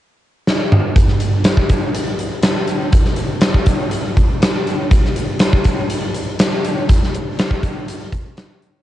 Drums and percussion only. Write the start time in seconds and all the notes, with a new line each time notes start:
0.47 snare
0.72 mid tom
0.96 kick, closed hi-hat
1.08 snare
1.20 closed hi-hat
1.44 snare, closed hi-hat
1.57 kick
1.69 kick, closed hi-hat
1.95 closed hi-hat
2.19 closed hi-hat
2.43 snare, closed hi-hat
2.68 closed hi-hat
2.93 kick, closed hi-hat
3.05 snare
3.16 closed hi-hat
3.41 snare, closed hi-hat
3.54 kick
3.66 kick, closed hi-hat
3.91 closed hi-hat
4.17 kick, closed hi-hat
4.42 snare, closed hi-hat
4.67 closed hi-hat
4.91 kick, closed hi-hat
5.05 snare
5.16 closed hi-hat
5.39 snare, closed hi-hat
5.53 kick
5.64 kick, closed hi-hat
5.90 closed hi-hat
6.14 closed hi-hat
6.39 snare, closed hi-hat
6.65 closed hi-hat
6.89 kick, closed hi-hat
7.04 snare
7.15 closed hi-hat
7.39 snare, closed hi-hat
7.51 kick
7.63 kick, closed hi-hat
7.88 closed hi-hat
8.12 kick, closed hi-hat
8.37 snare, closed hi-hat
8.62 closed hi-hat